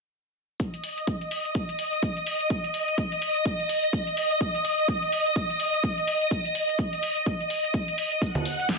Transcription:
0.60 string machine D#5 D#6, kick, closed hi-hat
0.74 closed hi-hat
0.84 open hi-hat
0.98 closed hi-hat
1.07 kick, closed hi-hat
1.21 closed hi-hat
1.31 open hi-hat
1.45 closed hi-hat
1.55 kick, closed hi-hat
1.69 closed hi-hat
1.79 open hi-hat
1.93 closed hi-hat
2.03 kick, closed hi-hat
2.17 closed hi-hat
2.26 open hi-hat
2.41 closed hi-hat
2.50 kick, closed hi-hat
2.64 closed hi-hat
2.74 open hi-hat
2.88 closed hi-hat
2.98 kick, closed hi-hat
3.12 closed hi-hat
3.22 open hi-hat
3.36 closed hi-hat
3.46 kick, closed hi-hat
3.60 closed hi-hat
3.69 open hi-hat
3.83 closed hi-hat
3.93 kick, closed hi-hat
4.07 closed hi-hat
4.17 open hi-hat
4.31 closed hi-hat
4.41 kick, closed hi-hat
4.55 closed hi-hat
4.65 open hi-hat
4.79 closed hi-hat
4.88 kick, closed hi-hat
5.03 closed hi-hat
5.12 open hi-hat
5.26 closed hi-hat
5.36 kick, closed hi-hat
5.50 closed hi-hat
5.60 open hi-hat
5.74 closed hi-hat
5.84 kick, closed hi-hat
5.98 closed hi-hat
6.08 open hi-hat
6.21 closed hi-hat
6.31 kick, closed hi-hat
6.45 closed hi-hat
6.55 open hi-hat
6.69 closed hi-hat
6.79 kick, closed hi-hat
6.93 closed hi-hat
7.03 open hi-hat
7.17 closed hi-hat
7.26 kick, closed hi-hat
7.41 closed hi-hat
7.50 open hi-hat
7.64 closed hi-hat
7.74 kick, closed hi-hat
7.88 closed hi-hat
7.98 open hi-hat
8.12 closed hi-hat
8.22 string machine F#5 F#6, kick, closed hi-hat, tambourine
8.35 closed hi-hat, tambourine, high conga
8.45 open hi-hat, tambourine
8.59 closed hi-hat, tambourine
8.69 kick, snare, closed hi-hat

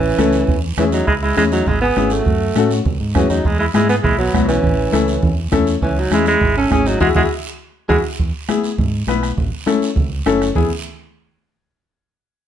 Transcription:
Already playing: fingered electric bass A1, alto saxophone E3, clean electric guitar C#4
0.18 fingered electric bass C#2, upright piano C#4 E4 A4, bombo rim, high conga, short guiro
0.33 short guiro
0.47 fingered electric bass E2, bombo low, high conga, low conga, long guiro
0.77 fingered electric bass E2, alto saxophone E3, upright piano C#4 E4 G#4, clean electric guitar C#4, bombo rim, high conga, low conga, short guiro
0.92 alto saxophone F#3, clean electric guitar D#4, short guiro
1.07 fingered electric bass C#2, alto saxophone G#3, clean electric guitar E4, bombo low, high conga, long guiro
1.22 alto saxophone G#3, clean electric guitar E4
1.36 fingered electric bass E2, alto saxophone G#3, upright piano C#4 E4 G#4, clean electric guitar E4, bombo rim, high conga, short guiro
1.52 alto saxophone F#3, clean electric guitar D#4, short guiro
1.67 fingered electric bass G#1, alto saxophone G#3, clean electric guitar E4, bombo low, high conga, low conga, long guiro
1.81 alto saxophone B3, clean electric guitar G#4
1.96 fingered electric bass G#1, upright piano C#4 E4 G#4, bombo rim, high conga, short guiro
2.10 alto saxophone A3, clean electric guitar F#4, short guiro
2.25 fingered electric bass F#2, bombo low, high conga, low conga, long guiro
2.56 fingered electric bass A2, upright piano C#4 F#4 A4, bombo rim, high conga, short guiro
2.71 short guiro
2.85 fingered electric bass C#2, bombo low, high conga, low conga, long guiro
3.00 fingered electric bass G#2
3.15 fingered electric bass F#2, alto saxophone E3, upright piano C#4 F#4 G#4, clean electric guitar C#4, bombo low, bombo rim, high conga, short guiro
3.30 fingered electric bass E2, alto saxophone F#3, clean electric guitar D#4, short guiro
3.45 fingered electric bass E2, alto saxophone G#3, clean electric guitar E4, bombo low, high conga, long guiro
3.59 alto saxophone G#3, clean electric guitar E4
3.74 fingered electric bass G#2, alto saxophone G#3, upright piano B3 E4 G#4, clean electric guitar E4, bombo rim, high conga, short guiro
3.89 alto saxophone B3, clean electric guitar G#4, short guiro
4.03 fingered electric bass B1, alto saxophone G#3, clean electric guitar E4, bombo low, high conga, low conga, long guiro
4.18 alto saxophone F#3, clean electric guitar B3
4.33 fingered electric bass B1, upright piano B3 E4 F#4, bombo low, bombo rim, high conga, short guiro
4.48 alto saxophone E3, clean electric guitar C#4, bombo rim, short guiro
4.63 fingered electric bass A1, bombo low, high conga, low conga, long guiro
4.92 fingered electric bass C#2, upright piano C#4 E4 A4, bombo rim, high conga, short guiro
5.08 short guiro
5.22 fingered electric bass E2, bombo low, high conga, low conga, long guiro
5.52 fingered electric bass E2, upright piano C#4 E4 A4, bombo low, bombo rim, high conga, low conga, short guiro
5.67 short guiro
5.82 fingered electric bass C#2, alto saxophone E3, clean electric guitar C#4, bombo low, high conga, long guiro
5.99 alto saxophone F#3, clean electric guitar D#4
6.11 fingered electric bass E2, alto saxophone G#3, upright piano C#4 E4 G#4, clean electric guitar E4, bombo rim, high conga, short guiro
6.26 alto saxophone G#3, clean electric guitar E4, short guiro
6.41 fingered electric bass G#1, bombo low, high conga, low conga, long guiro
6.57 alto saxophone C#4, clean electric guitar A4
6.70 fingered electric bass G#1, upright piano C#4 E4 G#4, alto saxophone C#4, clean electric guitar G#4, bombo low, bombo rim, high conga, short guiro
6.86 alto saxophone F#3, clean electric guitar D#4, short guiro
7.00 fingered electric bass E2, alto saxophone G#3, upright piano E4 F#4 G#4, clean electric guitar E4 F#4 G#4, bombo low, low conga, long guiro
7.15 fingered electric bass E2, alto saxophone G#3, upright piano E4 F#4 G#4, clean electric guitar E4 F#4 G#4, bombo low, low conga, long guiro
7.89 fingered electric bass E2, alto saxophone G#3, upright piano E4 F#4 G#4, clean electric guitar E4 F#4 G#4, bombo low, low conga, long guiro
8.19 fingered electric bass E2, bombo low, high conga, long guiro
8.48 upright piano B3 E4 G#4, bombo rim, high conga, short guiro
8.64 short guiro
8.78 fingered electric bass G#2, bombo low, high conga, low conga, long guiro
9.07 fingered electric bass B1, upright piano B3 E4 B4, bombo rim, high conga, short guiro
9.23 bombo rim, short guiro
9.37 fingered electric bass A1, bombo low, high conga, low conga, long guiro
9.66 upright piano C#4 E4 A4, bombo rim, high conga, short guiro
9.82 short guiro
9.96 fingered electric bass C#2, bombo low, high conga, low conga, long guiro
10.26 fingered electric bass F#1, upright piano C#4 E4 A4, bombo rim, high conga, short guiro
10.42 bombo rim, short guiro
10.55 fingered electric bass E2, upright piano B3 E4 G#4, bombo low, low conga, long guiro

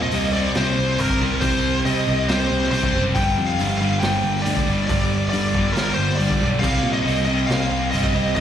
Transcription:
Already playing: overdriven electric guitar C3 G3 C4
0.02 lead electric guitar D#5
0.11 picked electric bass C2, overdriven electric guitar C3 G3 C4, open hi-hat
0.33 overdriven electric guitar C3 G3 C4, lead electric guitar D5
0.55 picked electric bass C2, overdriven electric guitar C3 G3 C4, lead electric guitar C5, snare, open hi-hat
0.78 picked electric bass C2
0.98 picked electric bass G1, overdriven electric guitar C3 G3 C4, lead electric guitar A#4, open hi-hat
1.09 kick
1.20 picked electric bass C2, overdriven electric guitar C3 G3 C4
1.41 picked electric bass C2, overdriven electric guitar C3 G3 C4, lead electric guitar C5, kick, open hi-hat
1.85 picked electric bass C3, overdriven electric guitar C3 G3 C4, lead electric guitar D#5, open hi-hat
2.07 picked electric bass C2, overdriven electric guitar C3 G3 C4
2.29 picked electric bass C2, overdriven electric guitar C3 G3 C4, lead electric guitar C5, snare, open hi-hat
2.51 picked electric bass C2
2.63 snare
2.71 picked electric bass C2, overdriven electric guitar C3 G3, lead electric guitar C5, open hi-hat
2.75 overdriven electric guitar C4
2.83 kick
2.93 picked electric bass F#1, overdriven electric guitar C3 G3 C4
3.15 picked electric bass G1, overdriven electric guitar G2 D3 G3, lead electric guitar G5, kick, open hi-hat
3.38 picked electric bass F2
3.46 lead electric guitar F5
3.59 picked electric bass G1, overdriven electric guitar G2 D3 G3, open hi-hat
3.78 overdriven electric guitar G2, lead electric guitar F5
3.82 overdriven electric guitar D3 G3
3.99 picked electric bass G1, lead electric guitar G5, snare, open hi-hat
4.04 overdriven electric guitar G2 D3 G3
4.24 picked electric bass G1
4.36 snare
4.42 picked electric bass D2, lead electric guitar D5, open hi-hat
4.47 overdriven electric guitar G2 D3 G3
4.57 kick
4.68 picked electric bass G1, overdriven electric guitar G2 D3 G3
4.87 picked electric bass G1, overdriven electric guitar G2 D3 G3, lead electric guitar D5, kick, open hi-hat
5.29 overdriven electric guitar G2, picked electric bass G2, lead electric guitar D5, open hi-hat
5.34 overdriven electric guitar D3 G3
5.54 picked electric bass G1, overdriven electric guitar G2 D3 G3, kick
5.73 picked electric bass G1, overdriven electric guitar G2 D3 G3, lead electric guitar A#4, snare, open hi-hat
5.94 picked electric bass G1, lead electric guitar C5
6.10 snare
6.15 overdriven electric guitar G2 D3, lead electric guitar D5
6.19 picked electric bass G1, overdriven electric guitar G3, open hi-hat
6.31 kick
6.41 picked electric bass B1, overdriven electric guitar G2 D3 G3
6.60 picked electric bass C2, overdriven electric guitar C3 G3 C4, lead electric guitar F5, kick, crash
6.83 picked electric bass A#2
6.93 lead electric guitar D#5
7.05 picked electric bass C2, overdriven electric guitar C3 G3 C4, open hi-hat
7.25 overdriven electric guitar C3 G3 C4, lead electric guitar D#5
7.47 picked electric bass C2, overdriven electric guitar C3 G3 C4, lead electric guitar F5, snare, open hi-hat
7.71 picked electric bass C2
7.91 picked electric bass G1, overdriven electric guitar C3 G3 C4, lead electric guitar D#5, open hi-hat
8.04 kick
8.14 picked electric bass C2, overdriven electric guitar C3 G3 C4
8.35 picked electric bass C2, overdriven electric guitar C3 G3 C4, lead electric guitar D#5, kick, open hi-hat

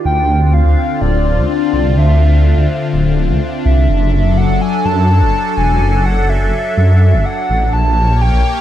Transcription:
0.05 detuned saw bass D2, analog synth pad D3 C4 D4 F4, soft synth lead G5
0.46 soft synth lead G5
0.53 soft synth lead F5
0.65 detuned saw bass D2
1.01 detuned saw bass D1, soft synth lead D5
1.37 detuned saw bass D2
1.49 soft synth lead D5
1.73 detuned saw bass C2
1.85 detuned saw bass C2
1.97 detuned saw bass D2, soft synth lead E5
2.57 detuned saw bass D2
2.93 detuned saw bass D1
3.29 detuned saw bass D2
3.65 detuned saw bass C2, soft synth lead E5
3.77 detuned saw bass C2
3.89 detuned saw bass F#1, analog synth pad F#3 A4
4.37 soft synth lead F#5
4.49 detuned saw bass F#1
4.61 soft synth lead G#5
4.85 detuned saw bass F#2, soft synth lead A5
5.09 soft synth lead A5
5.21 detuned saw bass F#1
5.57 detuned saw bass E1, soft synth lead G#5
5.69 detuned saw bass E1
5.81 detuned saw bass F#1
6.05 soft synth lead F#5
6.29 soft synth lead E5
6.41 detuned saw bass F#1
6.77 detuned saw bass F#2
7.13 detuned saw bass F#1
7.25 soft synth lead F#5
7.49 detuned saw bass A1
7.73 detuned saw bass A#1, analog synth pad A#3 G4 C#5, soft synth lead A5
8.21 soft synth lead G5
8.33 detuned saw bass A#1

